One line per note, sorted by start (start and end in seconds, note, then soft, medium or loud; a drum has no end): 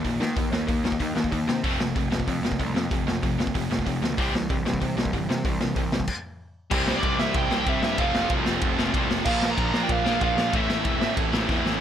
0.04 0.18 A#1 medium
0.04 0.19 D#3 medium
0.04 0.19 A#3 medium
0.04 kick medium
0.04 open hi-hat medium
0.20 0.33 D#3 medium
0.20 0.35 D#3 medium
0.20 0.35 A#3 medium
0.20 snare loud
0.36 0.50 D#2 medium
0.36 0.51 D#3 medium
0.36 0.51 A#3 medium
0.36 kick loud
0.36 open hi-hat medium
0.51 0.65 D#2 medium
0.51 0.66 D#3 medium
0.51 0.67 D#3 medium
0.51 0.66 A#3 medium
0.51 0.68 A#3 medium
0.51 snare loud
0.67 0.94 D#2 medium
0.67 0.82 D#3 medium
0.67 0.84 D#3 medium
0.67 0.83 A#3 medium
0.67 kick loud
0.67 open hi-hat medium
0.84 0.98 D#3 medium
0.84 1.00 D#3 medium
0.84 0.99 A#3 medium
0.84 1.00 A#3 medium
0.84 snare loud
0.92 kick medium
1.00 1.13 D#2 medium
1.00 1.14 D#3 medium
1.00 1.16 D#3 medium
1.00 1.15 A#3 medium
1.00 1.16 A#3 medium
1.00 kick medium
1.00 open hi-hat medium
1.15 1.28 D#2 medium
1.15 1.30 D#3 medium
1.15 1.31 D#3 medium
1.15 1.30 A#3 medium
1.15 1.32 A#3 medium
1.15 snare loud
1.24 kick medium
1.32 1.45 D#2 medium
1.32 1.46 D#3 medium
1.32 1.47 D#3 medium
1.32 1.47 A#3 medium
1.32 kick medium
1.32 open hi-hat medium
1.47 1.61 C3 medium
1.47 1.62 D#3 medium
1.47 1.63 D#3 medium
1.47 1.62 A#3 medium
1.47 1.63 A#3 medium
1.47 snare loud
1.64 1.77 F1 medium
1.64 1.79 F2 medium
1.64 1.79 C3 medium
1.64 1.79 F3 medium
1.64 1.79 F3 loud
1.64 1.79 A3 medium
1.64 1.80 C4 loud
1.64 kick loud
1.64 open hi-hat medium
1.79 1.92 F1 medium
1.79 1.94 F2 medium
1.79 1.94 C3 medium
1.79 1.94 F3 medium
1.79 1.95 A3 medium
1.79 snare loud
1.95 2.09 F1 medium
1.95 2.09 F2 medium
1.95 2.10 C3 medium
1.95 2.11 F3 medium
1.95 2.11 A3 medium
1.95 kick loud
1.95 open hi-hat soft
2.11 2.24 F1 medium
2.11 2.25 F2 medium
2.11 2.26 C3 medium
2.11 2.26 F3 medium
2.11 2.27 A3 medium
2.11 snare loud
2.20 kick medium
2.27 2.42 F2 medium
2.27 2.40 F2 medium
2.27 2.42 C3 medium
2.27 2.42 F3 medium
2.27 2.42 A3 medium
2.27 kick loud
2.27 open hi-hat medium
2.41 2.55 F1 medium
2.41 2.58 F2 medium
2.41 2.58 C3 medium
2.41 2.58 F3 medium
2.41 2.58 A3 medium
2.41 snare loud
2.52 kick medium
2.59 2.72 C2 medium
2.59 2.74 F2 medium
2.59 2.74 C3 medium
2.59 2.74 F3 medium
2.59 2.74 A3 medium
2.59 kick medium
2.59 open hi-hat medium
2.74 2.87 F2 medium
2.74 2.89 F2 medium
2.74 2.90 C3 medium
2.74 2.90 F3 medium
2.74 2.90 A3 medium
2.74 snare loud
2.91 3.04 F1 medium
2.91 3.05 F2 medium
2.91 3.05 C3 medium
2.91 3.06 F3 medium
2.91 3.06 A3 medium
2.91 kick loud
2.91 open hi-hat medium
3.06 3.19 F1 medium
3.06 3.21 F2 medium
3.06 3.21 C3 medium
3.06 3.21 F3 medium
3.06 3.21 A3 medium
3.06 snare loud
3.22 3.49 F1 medium
3.22 3.37 F2 medium
3.22 3.37 C3 medium
3.22 3.37 F3 medium
3.22 3.37 A3 medium
3.22 kick medium
3.22 open hi-hat medium
3.38 3.53 F2 medium
3.38 3.53 C3 medium
3.38 3.53 F3 medium
3.38 3.53 A3 medium
3.38 snare loud
3.47 kick medium
3.54 3.68 F1 medium
3.54 3.69 F2 medium
3.54 3.69 C3 medium
3.54 3.69 F3 medium
3.54 3.69 A3 medium
3.54 kick loud
3.54 open hi-hat medium
3.70 3.83 F1 medium
3.70 3.84 F2 medium
3.70 3.85 C3 medium
3.70 3.85 F3 medium
3.70 3.85 A3 medium
3.70 snare loud
3.79 kick medium
3.86 3.99 F1 medium
3.86 4.00 F2 medium
3.86 4.00 C3 medium
3.86 4.00 F3 medium
3.86 4.01 A3 medium
3.86 kick medium
3.86 open hi-hat medium
4.01 4.18 D2 medium
4.01 4.16 F2 medium
4.01 4.16 C3 medium
4.01 4.17 F3 medium
4.01 4.17 A3 medium
4.01 snare loud
4.17 4.31 C2 loud
4.17 4.33 C3 medium
4.17 4.33 E3 medium
4.17 4.33 G3 medium
4.17 4.34 G3 medium
4.17 4.33 C4 loud
4.17 kick loud
4.17 open hi-hat medium
4.33 4.46 C2 medium
4.33 4.48 C3 medium
4.33 4.49 E3 medium
4.33 4.48 G3 medium
4.33 snare loud
4.50 4.63 C2 medium
4.50 4.64 C3 medium
4.50 4.64 E3 medium
4.50 4.64 G3 medium
4.50 kick loud
4.50 open hi-hat medium
4.65 4.78 C2 medium
4.65 4.79 C3 medium
4.65 4.80 C3 medium
4.65 4.80 E3 medium
4.65 4.80 G3 medium
4.65 snare loud
4.74 kick medium
4.80 4.95 C3 medium
4.80 4.94 C3 medium
4.80 4.96 C3 medium
4.80 4.96 E3 medium
4.80 4.96 G3 medium
4.80 kick loud
4.80 open hi-hat medium
4.96 5.10 C2 medium
4.96 5.11 C3 medium
4.96 5.12 E3 medium
4.96 5.12 G3 medium
4.96 snare loud
5.05 kick medium
5.13 5.26 G1 medium
5.13 5.27 C3 medium
5.13 5.28 C3 medium
5.13 5.28 E3 medium
5.13 5.28 G3 medium
5.13 kick medium
5.13 open hi-hat soft
5.29 5.42 C3 medium
5.29 5.43 C3 medium
5.29 5.44 C3 medium
5.29 5.44 E3 medium
5.29 5.43 G3 medium
5.29 snare loud
5.45 5.58 C2 medium
5.45 5.59 C3 medium
5.45 5.60 E3 medium
5.45 5.59 G3 medium
5.45 kick loud
5.45 open hi-hat medium
5.60 5.74 C2 medium
5.60 5.75 C3 medium
5.60 5.75 E3 medium
5.60 5.75 G3 medium
5.60 snare loud
5.76 6.02 C2 medium
5.76 5.91 C3 medium
5.76 5.91 E3 medium
5.76 5.91 G3 medium
5.76 kick loud
5.76 open hi-hat medium
5.92 6.07 C3 medium
5.92 6.07 E3 medium
5.92 6.07 G3 medium
5.92 snare loud
6.00 kick medium
6.07 kick medium
6.07 crash loud
6.70 6.97 C2 loud
6.70 7.50 C3 medium
6.70 7.18 C3 medium
6.70 7.19 E3 medium
6.70 7.51 G3 loud
6.70 7.19 G3 loud
6.70 7.20 C4 loud
6.70 7.49 C4 loud
6.70 7.18 E4 loud
6.70 7.99 G4 loud
6.70 kick loud
6.70 crash loud
6.87 6.96 C5 medium
6.87 snare loud
6.96 7.20 D5 loud
7.03 7.16 C2 medium
7.03 kick loud
7.03 ride medium
7.19 7.32 C2 medium
7.19 7.99 C3 medium
7.19 7.98 E3 medium
7.19 7.99 G3 medium
7.19 7.98 C4 medium
7.19 7.98 E4 medium
7.19 7.36 E5 loud
7.19 snare loud
7.34 7.47 C2 medium
7.34 7.69 G5 loud
7.34 kick loud
7.34 ride medium
7.50 7.64 C2 loud
7.50 7.64 C3 medium
7.50 7.66 G3 medium
7.50 7.66 C4 medium
7.50 snare loud
7.65 7.79 C2 medium
7.65 7.97 C3 medium
7.65 7.98 G3 medium
7.65 7.99 C4 medium
7.65 7.83 E5 loud
7.65 kick loud
7.65 ride medium
7.82 7.95 G2 medium
7.82 8.00 E5 medium
7.82 snare loud
7.98 8.11 F1 loud
7.98 8.77 F2 loud
7.98 8.77 C3 loud
7.98 8.48 F3 loud
7.98 8.76 F3 loud
7.98 8.46 A3 loud
7.98 8.45 C4 loud
7.98 8.45 F4 loud
7.98 8.29 F5 medium
7.98 kick loud
7.98 ride medium
8.14 8.27 F1 medium
8.14 snare loud
8.30 8.43 C2 medium
8.30 kick loud
8.30 ride medium
8.45 8.59 F1 medium
8.45 9.26 F3 medium
8.45 9.26 A3 medium
8.45 9.25 C4 medium
8.45 9.25 F4 medium
8.45 snare loud
8.61 8.75 F1 medium
8.61 kick loud
8.61 ride medium
8.77 8.91 F1 loud
8.77 8.92 F2 medium
8.77 8.94 C3 medium
8.77 8.93 F3 medium
8.77 snare loud
8.93 9.07 C2 medium
8.93 9.25 F2 medium
8.93 9.25 C3 medium
8.93 9.25 F3 medium
8.93 kick loud
8.93 ride medium
9.10 9.23 F1 medium
9.10 snare loud
9.25 9.51 A#1 medium
9.25 10.04 A#2 loud
9.25 9.73 A#2 medium
9.25 10.05 F3 loud
9.25 9.74 F3 medium
9.25 10.03 A#3 loud
9.25 9.74 A#3 medium
9.25 9.74 D4 loud
9.25 9.50 F5 loud
9.25 kick loud
9.25 crash loud
9.29 9.73 F4 medium
9.43 snare loud
9.51 9.83 A#5 loud
9.58 9.71 A#1 medium
9.58 kick loud
9.58 ride medium
9.73 9.86 A#1 medium
9.73 10.52 A#2 medium
9.73 10.53 F3 medium
9.73 10.54 A#3 medium
9.73 10.53 D4 medium
9.73 10.53 F4 medium
9.73 snare loud
9.83 9.92 G5 medium
9.89 10.02 A#1 medium
9.89 10.22 F5 loud
9.89 kick loud
9.89 ride medium
10.04 10.18 A#1 loud
10.04 10.19 A#2 medium
10.04 10.21 F3 medium
10.04 10.20 A#3 medium
10.04 snare loud
10.20 10.34 A#1 medium
10.20 10.52 A#2 medium
10.20 10.53 F3 medium
10.20 10.54 A#3 medium
10.20 10.52 F5 loud
10.20 kick loud
10.20 ride medium
10.37 10.50 A#1 loud
10.37 snare loud
10.52 10.66 A1 loud
10.52 11.00 A2 loud
10.52 11.32 A2 medium
10.52 11.03 E3 medium
10.52 11.32 E3 loud
10.52 11.01 A3 loud
10.52 11.31 A3 loud
10.52 11.01 C4 medium
10.52 11.01 E4 loud
10.52 11.15 E5 medium
10.52 kick loud
10.52 ride medium
10.70 10.82 A1 medium
10.70 snare loud
10.85 10.98 E1 medium
10.85 kick loud
10.85 ride medium
11.01 11.14 A1 medium
11.01 11.80 A2 medium
11.01 11.80 E3 medium
11.01 11.81 A3 medium
11.01 11.81 C4 medium
11.01 11.80 E4 medium
11.01 snare loud
11.17 11.30 A1 medium
11.17 kick loud
11.17 ride medium
11.32 11.46 A1 loud
11.32 11.46 A2 medium
11.32 11.48 E3 medium
11.32 11.48 A3 medium
11.32 snare loud
11.48 11.62 E2 medium
11.48 11.79 A2 medium
11.48 11.80 E3 medium
11.48 11.81 A3 medium
11.48 kick loud
11.48 snare medium
11.65 11.78 A1 loud
11.65 snare medium